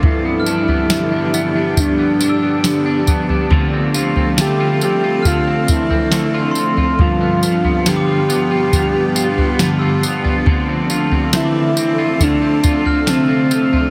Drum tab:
TB |--x-x-x-x-x-x-x-|--x-x-x-x-x-x-x-|--x-x-x-x-x-x-x-|--x-x-x-x-x-x-x-|
SD |----o-------o---|----o-------o---|----o-------o---|----o-------o---|
FT |o--o----o------o|o--o----o--o---o|o--o----o--o---o|o--o----o--o---o|
BD |o-------o-----o-|o-------o-o-----|o-------o-------|o-------o-o-----|